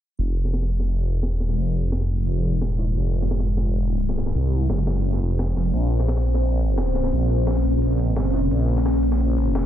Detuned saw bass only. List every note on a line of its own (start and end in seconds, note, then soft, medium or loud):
0.19 1.16 F1 medium
1.16 1.43 E1 medium
1.43 1.56 D#1 medium
1.57 2.54 F1 medium
2.54 2.81 E1 medium
2.81 2.95 D#1 medium
2.96 4.34 F1 loud
4.35 4.68 C2 loud
4.70 5.20 F#1 medium
5.22 5.55 F1 loud
5.56 5.72 F1 medium
5.74 7.11 A#1 loud
7.12 8.11 A#1 loud
8.11 8.33 G#1 loud
8.33 8.50 F#1 loud
8.51 9.66 A#1 medium